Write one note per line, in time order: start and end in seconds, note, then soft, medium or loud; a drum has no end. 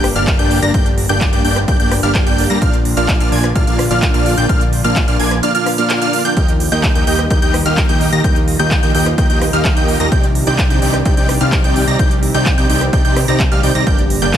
0.00 0.13 G1 loud
0.00 10.08 A#2 medium
0.00 2.58 D3 medium
0.00 2.58 G3 medium
0.00 6.33 D4 medium
0.00 2.58 G4 medium
0.00 cross-stick medium
0.00 open hi-hat loud
0.16 0.37 G1 medium
0.16 0.36 A#3 medium
0.16 0.36 D4 medium
0.16 0.36 G4 medium
0.16 0.36 D5 medium
0.16 0.36 F5 medium
0.16 0.36 F6 medium
0.16 closed hi-hat soft
0.27 kick loud
0.27 clap loud
0.27 closed hi-hat medium
0.39 0.60 G1 loud
0.39 0.60 A#3 medium
0.39 0.60 D4 medium
0.39 0.60 G4 medium
0.39 0.60 D5 medium
0.39 0.60 G5 loud
0.39 0.60 G6 loud
0.39 closed hi-hat soft
0.51 open hi-hat medium
0.62 0.72 G1 loud
0.62 0.71 A#3 loud
0.62 0.71 D4 medium
0.62 0.71 G4 medium
0.62 0.71 D5 medium
0.62 0.71 A#5 loud
0.62 0.71 A#6 loud
0.62 closed hi-hat soft
0.74 1.07 G1 loud
0.74 0.89 A#3 medium
0.74 0.89 D4 medium
0.74 0.89 G4 medium
0.74 0.89 D5 medium
0.74 0.89 G5 medium
0.74 0.89 G6 medium
0.74 kick loud
0.74 closed hi-hat medium
0.86 closed hi-hat soft
0.98 open hi-hat loud
1.09 1.31 G1 loud
1.09 1.29 A#3 medium
1.09 1.29 D4 medium
1.09 1.29 G4 medium
1.09 1.29 D5 medium
1.09 1.29 G5 medium
1.09 1.29 G6 loud
1.09 closed hi-hat soft
1.21 kick loud
1.21 clap loud
1.21 closed hi-hat medium
1.33 1.42 G1 loud
1.33 1.42 A#3 medium
1.33 1.42 D4 medium
1.33 1.42 G4 medium
1.33 1.42 D5 medium
1.33 1.42 G5 medium
1.33 1.42 G6 medium
1.33 closed hi-hat soft
1.45 1.66 G1 loud
1.45 1.59 A#3 medium
1.45 1.59 D4 medium
1.45 1.59 G4 medium
1.45 1.59 D5 medium
1.45 1.59 G5 loud
1.45 1.59 G6 loud
1.45 open hi-hat medium
1.56 cross-stick medium
1.56 closed hi-hat soft
1.68 1.77 G1 loud
1.68 1.77 A#3 medium
1.68 1.77 D4 medium
1.68 1.77 G4 medium
1.68 1.77 D5 medium
1.68 1.77 G5 loud
1.68 1.77 G6 medium
1.68 kick loud
1.68 closed hi-hat medium
1.80 2.01 G1 loud
1.80 1.94 A#3 medium
1.80 1.94 D4 medium
1.80 1.94 G4 medium
1.80 1.94 D5 medium
1.80 1.94 G5 loud
1.80 1.94 G6 loud
1.80 closed hi-hat soft
1.91 cross-stick medium
1.91 open hi-hat loud
2.03 2.24 G1 loud
2.03 2.24 A#3 medium
2.03 2.24 D4 medium
2.03 2.24 G4 medium
2.03 2.24 D5 medium
2.03 2.24 F5 medium
2.03 2.24 F6 medium
2.03 closed hi-hat soft
2.15 kick loud
2.15 clap loud
2.15 closed hi-hat medium
2.27 2.48 G1 loud
2.27 2.47 A#3 medium
2.27 2.47 D4 medium
2.27 2.47 G4 medium
2.27 2.47 D5 medium
2.27 2.47 G5 loud
2.27 2.47 G6 loud
2.27 closed hi-hat soft
2.38 open hi-hat medium
2.50 2.59 G2 loud
2.50 2.59 A#3 loud
2.50 2.59 D4 medium
2.50 2.59 G4 medium
2.50 2.59 D5 medium
2.50 2.59 A#5 loud
2.50 2.59 A#6 loud
2.50 closed hi-hat soft
2.62 2.95 A#1 loud
2.62 6.33 D3 medium
2.62 6.33 F3 medium
2.62 2.76 A#3 medium
2.62 2.76 D4 medium
2.62 2.76 F4 medium
2.62 6.33 F4 medium
2.62 2.76 D5 medium
2.62 2.76 F5 medium
2.62 2.76 F6 medium
2.62 kick loud
2.62 closed hi-hat medium
2.74 closed hi-hat soft
2.85 open hi-hat loud
2.97 3.18 A#1 loud
2.97 3.17 A#3 medium
2.97 3.17 D4 medium
2.97 3.17 F4 medium
2.97 3.17 D5 medium
2.97 3.17 F5 loud
2.97 3.17 F6 loud
2.97 closed hi-hat soft
3.08 kick loud
3.08 clap loud
3.08 closed hi-hat medium
3.20 3.30 A#1 loud
3.20 3.29 A#3 medium
3.20 3.29 D4 medium
3.20 3.29 F4 medium
3.20 3.29 D5 medium
3.20 3.29 F5 medium
3.20 3.29 F6 loud
3.20 closed hi-hat soft
3.32 3.53 A#1 loud
3.32 3.46 A#3 medium
3.32 3.46 D4 medium
3.32 3.46 F4 medium
3.32 3.46 D5 medium
3.32 3.46 G#5 loud
3.32 3.46 G#6 loud
3.32 open hi-hat medium
3.44 cross-stick medium
3.44 closed hi-hat soft
3.55 3.65 A#1 loud
3.55 3.64 A#3 medium
3.55 3.64 D4 medium
3.55 3.64 F4 medium
3.55 3.64 D5 medium
3.55 3.64 F5 loud
3.55 3.64 F6 medium
3.55 kick loud
3.55 closed hi-hat medium
3.67 3.88 A#1 loud
3.67 3.82 A#3 medium
3.67 3.82 D4 medium
3.67 3.82 F4 medium
3.67 3.82 D5 medium
3.67 3.82 F5 loud
3.67 3.82 F6 medium
3.67 closed hi-hat soft
3.79 cross-stick medium
3.79 open hi-hat loud
3.91 4.12 A#1 medium
3.91 4.11 A#3 medium
3.91 4.11 D4 medium
3.91 4.11 F4 medium
3.91 4.11 D5 medium
3.91 4.11 F5 medium
3.91 4.11 F6 medium
3.91 closed hi-hat soft
4.02 kick loud
4.02 clap loud
4.02 closed hi-hat medium
4.14 4.35 A#1 loud
4.14 4.35 A#3 medium
4.14 4.35 D4 medium
4.14 4.35 F4 medium
4.14 4.35 D5 medium
4.14 4.35 F5 loud
4.14 4.35 F6 loud
4.14 closed hi-hat soft
4.26 open hi-hat medium
4.38 4.47 A#1 loud
4.38 4.46 A#3 medium
4.38 4.46 D4 medium
4.38 4.46 F4 medium
4.38 4.46 D5 medium
4.38 4.46 G5 loud
4.38 4.46 G6 loud
4.38 closed hi-hat soft
4.49 4.82 A#1 loud
4.49 4.64 A#3 medium
4.49 4.64 D4 medium
4.49 4.64 F4 medium
4.49 4.64 D5 medium
4.49 4.64 F5 medium
4.49 4.64 F6 medium
4.49 kick loud
4.49 closed hi-hat medium
4.61 closed hi-hat soft
4.73 open hi-hat loud
4.84 5.06 A#1 loud
4.84 5.04 A#3 medium
4.84 5.04 D4 medium
4.84 5.04 F4 medium
4.84 5.04 D5 medium
4.84 5.04 F5 medium
4.84 5.04 F6 loud
4.84 closed hi-hat soft
4.96 kick loud
4.96 clap loud
4.96 closed hi-hat medium
5.08 5.17 A#1 loud
5.08 5.17 A#3 medium
5.08 5.17 D4 medium
5.08 5.17 F4 medium
5.08 5.17 D5 medium
5.08 5.17 F5 medium
5.08 5.17 F6 medium
5.08 closed hi-hat soft
5.20 5.41 A#1 loud
5.20 5.34 A#3 medium
5.20 5.34 D4 medium
5.20 5.34 F4 medium
5.20 5.34 D5 medium
5.20 5.34 G#5 loud
5.20 5.34 G#6 loud
5.20 open hi-hat medium
5.31 cross-stick medium
5.31 closed hi-hat soft
5.43 5.52 A#3 medium
5.43 5.52 D4 medium
5.43 5.52 F4 medium
5.43 5.52 D5 medium
5.43 5.52 F5 loud
5.43 5.52 F6 loud
5.43 closed hi-hat medium
5.55 5.69 A#3 medium
5.55 5.69 D4 medium
5.55 5.69 F4 medium
5.55 5.69 D5 medium
5.55 5.69 F5 loud
5.55 5.69 F6 loud
5.55 closed hi-hat soft
5.66 cross-stick medium
5.66 open hi-hat loud
5.78 5.99 A#3 medium
5.78 5.99 D4 medium
5.78 5.99 F4 medium
5.78 5.99 D5 medium
5.78 5.99 F5 medium
5.78 5.99 F6 medium
5.78 closed hi-hat soft
5.90 clap loud
5.90 closed hi-hat medium
6.02 6.22 A#3 medium
6.02 6.22 D4 medium
6.02 6.22 F4 medium
6.02 6.22 D5 medium
6.02 6.22 F5 loud
6.02 6.22 F6 loud
6.02 closed hi-hat soft
6.13 open hi-hat medium
6.25 6.34 A#3 loud
6.25 6.34 D4 medium
6.25 6.34 F4 medium
6.25 6.34 D5 medium
6.25 6.34 G5 loud
6.25 6.34 G6 loud
6.25 closed hi-hat soft
6.37 6.70 D#2 loud
6.37 10.08 D#3 medium
6.37 14.37 G3 medium
6.37 6.51 A#3 medium
6.37 10.08 D#4 medium
6.37 6.51 D#4 medium
6.37 8.22 G4 medium
6.37 6.51 G4 medium
6.37 6.51 D#5 medium
6.37 6.51 G5 medium
6.37 6.51 G6 medium
6.37 kick loud
6.37 closed hi-hat medium
6.48 closed hi-hat soft
6.60 open hi-hat loud
6.72 6.93 D#2 loud
6.72 6.92 A#3 medium
6.72 6.92 D#4 medium
6.72 6.92 G4 medium
6.72 6.92 D#5 medium
6.72 6.92 G5 loud
6.72 6.92 G6 loud
6.72 closed hi-hat soft
6.83 kick loud
6.83 clap loud
6.83 closed hi-hat medium
6.95 7.05 D#2 loud
6.95 7.04 A#3 medium
6.95 7.04 D#4 medium
6.95 7.04 G4 medium
6.95 7.04 D#5 medium
6.95 7.04 G5 medium
6.95 7.04 G6 medium
6.95 closed hi-hat soft
7.07 7.28 D#2 medium
7.07 7.21 A#3 medium
7.07 7.21 D#4 medium
7.07 7.21 G4 medium
7.07 7.21 D#5 medium
7.07 7.21 G5 loud
7.07 7.21 G6 loud
7.07 open hi-hat medium
7.19 cross-stick medium
7.19 closed hi-hat soft
7.30 7.40 D#2 loud
7.30 7.39 A#3 medium
7.30 7.39 D#4 medium
7.30 7.39 G4 medium
7.30 7.39 D#5 medium
7.30 7.39 G5 loud
7.30 7.39 G6 loud
7.30 kick loud
7.30 closed hi-hat medium
7.42 7.63 D#2 loud
7.42 7.57 A#3 medium
7.42 7.57 D#4 medium
7.42 7.57 G4 medium
7.42 7.57 D#5 medium
7.42 7.57 G5 medium
7.42 7.57 G6 loud
7.42 closed hi-hat soft
7.54 cross-stick medium
7.54 open hi-hat loud
7.66 7.87 D#2 medium
7.66 7.86 A#3 medium
7.66 7.86 D#4 medium
7.66 7.86 G4 medium
7.66 7.86 D#5 medium
7.66 7.86 F5 medium
7.66 7.86 F6 medium
7.66 closed hi-hat soft
7.77 kick loud
7.77 clap loud
7.77 closed hi-hat medium
7.89 8.10 D#2 loud
7.89 8.10 A#3 medium
7.89 8.10 D#4 medium
7.89 8.10 G4 medium
7.89 8.10 D#5 medium
7.89 8.10 G5 loud
7.89 8.10 G6 loud
7.89 closed hi-hat soft
8.01 open hi-hat medium
8.13 8.22 D#2 loud
8.13 8.21 A#3 loud
8.13 8.21 D#4 medium
8.13 8.21 G4 medium
8.13 8.21 D#5 medium
8.13 8.21 A#5 loud
8.13 8.21 A#6 loud
8.13 closed hi-hat soft
8.24 8.57 D#2 loud
8.24 8.39 A#3 medium
8.24 8.39 D#4 medium
8.24 10.10 F4 medium
8.24 8.39 G4 medium
8.24 8.39 D#5 medium
8.24 8.39 G5 medium
8.24 8.39 G6 medium
8.24 kick loud
8.24 closed hi-hat medium
8.36 closed hi-hat soft
8.48 open hi-hat loud
8.59 8.81 D#2 loud
8.59 8.79 A#3 medium
8.59 8.79 D#4 medium
8.59 8.79 G4 medium
8.59 8.79 D#5 medium
8.59 8.79 G5 loud
8.59 8.79 G6 loud
8.59 closed hi-hat soft
8.71 kick loud
8.71 clap loud
8.71 closed hi-hat medium
8.83 8.92 D#2 loud
8.83 8.92 A#3 medium
8.83 8.92 D#4 medium
8.83 8.92 G4 medium
8.83 8.92 D#5 medium
8.83 8.92 G5 medium
8.83 8.92 G6 medium
8.83 closed hi-hat soft
8.95 9.16 D#2 medium
8.95 9.09 A#3 medium
8.95 9.09 D#4 medium
8.95 9.09 G4 medium
8.95 9.09 D#5 medium
8.95 9.09 G5 loud
8.95 9.09 G6 loud
8.95 open hi-hat medium
9.06 cross-stick medium
9.06 closed hi-hat soft
9.18 9.27 D#2 medium
9.18 9.27 A#3 medium
9.18 9.27 D#4 medium
9.18 9.27 G4 medium
9.18 9.27 D#5 medium
9.18 9.27 G5 loud
9.18 9.27 G6 medium
9.18 kick loud
9.18 closed hi-hat medium
9.30 9.51 D#2 loud
9.30 9.44 A#3 medium
9.30 9.44 D#4 medium
9.30 9.44 G4 medium
9.30 9.44 D#5 medium
9.30 9.44 G5 loud
9.30 9.44 G6 loud
9.30 closed hi-hat soft
9.42 cross-stick medium
9.42 open hi-hat loud
9.53 9.74 D#2 loud
9.53 9.74 A#3 medium
9.53 9.74 D#4 medium
9.53 9.74 G4 medium
9.53 9.74 D#5 medium
9.53 9.74 F5 medium
9.53 9.74 F6 medium
9.53 closed hi-hat soft
9.65 kick loud
9.65 clap loud
9.65 closed hi-hat medium
9.77 9.98 D#2 loud
9.77 9.97 A#3 medium
9.77 9.97 D#4 medium
9.77 9.97 G4 medium
9.77 9.97 D#5 medium
9.77 9.97 G5 loud
9.77 9.97 G6 loud
9.77 closed hi-hat soft
9.88 open hi-hat loud
10.00 10.09 D#2 loud
10.00 10.09 A#3 loud
10.00 10.09 D#4 medium
10.00 10.09 G4 medium
10.00 10.09 D#5 medium
10.00 10.09 A#5 loud
10.00 10.09 A#6 loud
10.00 closed hi-hat soft
10.12 10.45 C2 loud
10.12 13.83 C3 medium
10.12 13.83 D#3 medium
10.12 10.26 C4 medium
10.12 11.97 D4 medium
10.12 10.26 D#4 medium
10.12 14.37 G4 medium
10.12 10.26 G4 medium
10.12 10.26 D5 medium
10.12 10.26 G5 medium
10.12 10.26 G6 medium
10.12 kick loud
10.12 closed hi-hat medium
10.24 closed hi-hat soft
10.35 open hi-hat loud
10.47 10.68 C2 loud
10.47 10.67 C4 medium
10.47 10.67 D#4 medium
10.47 10.67 G4 medium
10.47 10.67 D5 medium
10.47 10.67 G5 loud
10.47 10.67 G6 loud
10.47 closed hi-hat soft
10.58 kick loud
10.58 clap loud
10.58 closed hi-hat medium
10.70 10.80 C2 loud
10.70 10.79 C4 medium
10.70 10.79 D#4 medium
10.70 10.79 G4 medium
10.70 10.79 D5 medium
10.70 10.79 G5 medium
10.70 10.79 G6 medium
10.70 closed hi-hat soft
10.82 11.03 C2 loud
10.82 10.96 C4 medium
10.82 10.96 D#4 medium
10.82 10.96 G4 medium
10.82 10.96 D5 medium
10.82 10.96 G5 loud
10.82 10.96 G6 loud
10.82 open hi-hat medium
10.94 cross-stick medium
10.94 closed hi-hat soft
11.05 11.15 C2 loud
11.05 11.14 C4 medium
11.05 11.14 D#4 medium
11.05 11.14 G4 medium
11.05 11.14 D5 medium
11.05 11.14 G5 loud
11.05 11.14 G6 medium
11.05 kick loud
11.05 closed hi-hat medium
11.17 11.38 C2 medium
11.17 11.32 C4 medium
11.17 11.32 D#4 medium
11.17 11.32 G4 medium
11.17 11.32 D5 medium
11.17 11.32 G5 loud
11.17 11.32 G6 loud
11.17 closed hi-hat soft
11.29 cross-stick medium
11.29 open hi-hat loud
11.41 11.62 C2 loud
11.41 11.61 C4 medium
11.41 11.61 D#4 medium
11.41 11.61 G4 medium
11.41 11.61 D5 medium
11.41 11.61 F5 medium
11.41 11.61 F6 medium
11.41 closed hi-hat soft
11.52 kick loud
11.52 clap loud
11.52 closed hi-hat medium
11.64 11.85 C2 loud
11.64 11.85 C4 medium
11.64 11.85 D#4 medium
11.64 11.85 G4 medium
11.64 11.85 D5 medium
11.64 11.85 G5 loud
11.64 11.85 G6 loud
11.64 closed hi-hat soft
11.76 open hi-hat loud
11.88 11.97 C2 loud
11.88 11.96 C4 loud
11.88 11.96 D#4 medium
11.88 11.96 G4 medium
11.88 11.96 D5 medium
11.88 11.96 A#5 loud
11.88 11.96 A#6 loud
11.88 closed hi-hat soft
11.99 12.32 C2 loud
11.99 13.85 C4 medium
11.99 12.14 C4 medium
11.99 12.14 D#4 medium
11.99 12.14 G4 medium
11.99 12.14 D5 medium
11.99 12.14 G5 medium
11.99 12.14 G6 medium
11.99 kick loud
11.99 closed hi-hat medium
12.11 closed hi-hat soft
12.23 open hi-hat loud
12.34 12.56 C2 loud
12.34 12.54 C4 medium
12.34 12.54 D#4 medium
12.34 12.54 G4 medium
12.34 12.54 D5 medium
12.34 12.54 G5 loud
12.34 12.54 G6 loud
12.34 closed hi-hat soft
12.46 kick loud
12.46 clap loud
12.46 closed hi-hat medium
12.58 12.67 C2 loud
12.58 12.67 C4 medium
12.58 12.67 D#4 medium
12.58 12.67 G4 medium
12.58 12.67 D5 medium
12.58 12.67 G5 medium
12.58 12.67 G6 loud
12.58 closed hi-hat soft
12.70 12.91 C2 loud
12.70 12.84 C4 medium
12.70 12.84 D#4 medium
12.70 12.84 G4 medium
12.70 12.84 D5 medium
12.70 12.84 G5 loud
12.70 12.84 G6 loud
12.70 open hi-hat loud
12.81 cross-stick medium
12.81 closed hi-hat soft
12.93 13.02 C2 loud
12.93 13.02 C4 medium
12.93 13.02 D#4 medium
12.93 13.02 G4 medium
12.93 13.02 D5 medium
12.93 13.02 G5 loud
12.93 13.02 G6 medium
12.93 kick loud
12.93 closed hi-hat medium
13.05 13.26 C2 loud
13.05 13.19 C4 medium
13.05 13.19 D#4 medium
13.05 13.19 G4 medium
13.05 13.19 D5 medium
13.05 13.19 G5 loud
13.05 13.19 G6 loud
13.05 closed hi-hat soft
13.16 cross-stick medium
13.16 open hi-hat loud
13.28 13.49 C2 loud
13.28 13.42 C4 medium
13.28 13.42 D#4 medium
13.28 13.42 G4 medium
13.28 13.42 D5 medium
13.28 13.42 A#5 loud
13.28 13.42 A#6 loud
13.28 closed hi-hat soft
13.40 kick loud
13.40 clap loud
13.40 closed hi-hat medium
13.52 13.61 C2 loud
13.52 13.61 C4 medium
13.52 13.61 D#4 medium
13.52 13.61 G4 medium
13.52 13.61 D5 medium
13.52 13.61 F5 medium
13.52 13.61 F6 medium
13.52 closed hi-hat soft
13.63 13.73 C2 loud
13.63 13.72 C4 medium
13.63 13.72 D#4 medium
13.63 13.72 G4 medium
13.63 13.72 D5 medium
13.63 13.72 G5 loud
13.63 13.72 G6 loud
13.63 open hi-hat loud
13.75 13.84 C2 loud
13.75 13.84 C4 medium
13.75 13.84 D#4 medium
13.75 13.84 G4 medium
13.75 13.84 D5 medium
13.75 13.84 A#5 loud
13.75 13.84 A#6 loud
13.75 closed hi-hat soft
13.87 14.20 G1 loud
13.87 14.37 A#2 medium
13.87 14.37 D3 medium
13.87 14.01 A#3 medium
13.87 14.37 D4 medium
13.87 14.01 D4 medium
13.87 14.01 G4 medium
13.87 14.01 D5 medium
13.87 14.01 G5 medium
13.87 14.01 G6 medium
13.87 kick loud
13.87 closed hi-hat medium
13.98 closed hi-hat soft
14.10 open hi-hat loud
14.22 14.37 G1 medium
14.22 14.37 A#3 medium
14.22 14.37 D4 medium
14.22 14.37 G4 medium
14.22 14.37 D5 medium
14.22 14.37 G5 medium
14.22 14.37 G6 loud
14.22 closed hi-hat soft
14.33 kick loud
14.33 clap loud
14.33 closed hi-hat medium